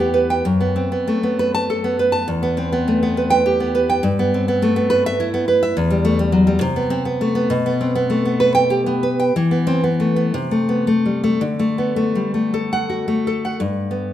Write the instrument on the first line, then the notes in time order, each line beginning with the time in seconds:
nylon-string guitar
Already playing: E2 A3 G4 B4
0.00 B3
0.14 B4
0.30 G5
0.45 F#2
0.61 B3
0.76 C4
0.92 B3
1.08 A3
1.23 B3
1.39 B4
1.55 A5
1.70 A4
1.84 B3
1.99 B4
2.12 A5
2.28 E2
2.43 B3
2.57 C4
2.73 B3
2.88 A3
3.03 B3
3.17 B4
3.30 G5
3.46 G4
3.60 B3
3.75 B4
3.90 G5
4.03 G2
4.19 B3
4.34 C4
4.48 B3
4.62 A3
4.76 B3
4.90 B4
5.06 E5
5.20 E4
5.34 B3
5.48 B4
5.63 E5
5.77 E2
5.90 G3
6.05 A3
6.19 G3
6.32 F#3
6.47 G3
6.61 C3
6.76 B3
6.90 C4
7.05 B3
7.21 A3
7.35 B3
7.50 B2
7.66 B3
7.81 C4
7.95 B3
8.10 A3
8.25 B3
8.40 B4
8.55 G5
8.70 G4
8.86 B3
9.03 B4
9.20 G5
9.36 E3
9.51 B3
9.67 C4
9.84 B3
10.00 A3
10.16 B3
10.34 C3
10.51 A3
10.69 B3
10.87 A3
11.06 G3
11.24 A3
11.41 D3
11.59 A3
11.78 B3
11.96 A3
12.15 G3
12.34 A3
12.54 A4
12.73 F#5
12.90 F#4
13.08 A3
13.27 A4
13.45 F#5
13.60 G2
13.91 B3